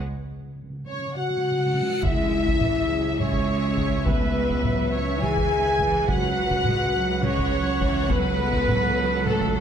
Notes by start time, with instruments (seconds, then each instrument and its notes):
0.01 reverse cymbal
0.09 timpani C#3
0.16 timpani C#3
0.31 timpani C#3
0.39 timpani C#3
0.46 timpani C#3
0.54 timpani C#3
0.62 timpani C#3
0.70 timpani C#3
0.77 timpani C#3
0.84 timpani C#3, french horn section C#4, trumpet C#5, violin section C#5
0.92 timpani C#3
0.99 timpani C#3
1.07 timpani C#3
1.15 timpani C#3, french horn section F#4, violin section F#5, trumpet F#5
1.21 timpani C#3
1.29 timpani C#3
1.37 timpani C#3
1.44 timpani C#3
1.51 timpani C#3
1.59 timpani C#3
1.66 timpani C#3
1.74 timpani C#3
1.81 timpani C#3
1.89 timpani C#3
2.02 double bass section C#2, timpani C#3, cello section G#3, french horn section E4, viola section G#4 E5, violin section E5, trumpet E5, taiko, impact
2.47 taiko
2.60 cello section E3, taiko mid
2.90 cello section F#3
3.19 cello section G#3, french horn section C#4, trumpet C#5, violin section C#5, taiko mid
3.34 taiko
3.77 taiko
4.06 cello section A3, french horn section B3, violin section B4, trumpet B4, viola section B4, taiko
4.36 cello section G#3
4.49 taiko
4.63 cello section F#3, taiko mid
4.92 french horn section C#4, trumpet C#5, violin section C#5
5.21 cello section E3, french horn section G#4, trumpet G#5, violin section G#5, taiko mid
5.37 taiko
5.50 cello section D#3
5.80 cello section E3, taiko
6.08 double bass section C#2, timpani C#3, cello section F#3, french horn section F#4, trumpet F#5, violin section F#5, viola section F#5, taiko
6.51 taiko
6.65 cello section G#3, taiko mid
6.95 cello section F#3
7.23 cello section G#3, french horn section C#4, trumpet C#5, violin section C#5, taiko mid
7.37 taiko
7.54 cello section F#3
7.81 cello section E3, taiko
8.09 cello section F#3, french horn section B3, viola section A4, trumpet B4, violin section B4, taiko
8.40 cello section G#3
8.53 taiko
8.68 cello section F#3, taiko mid
9.26 french horn section A3, trumpet A4, violin section A4, taiko mid
9.41 taiko